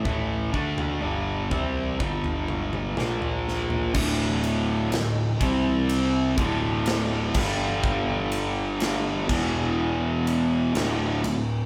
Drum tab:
CC |----------------|x-------------x-|------x---------|
RD |----------------|--x-x-x-x-x-x---|--x-x-----x-x-x-|
SD |------------o-o-|----o-------o---|----o-------o---|
T2 |---o------ooo---|----------------|----------------|
FT |o--o--o--o---o-o|----------------|----------------|
BD |o-o---o-o-------|o-----o---o---o-|o-----o---------|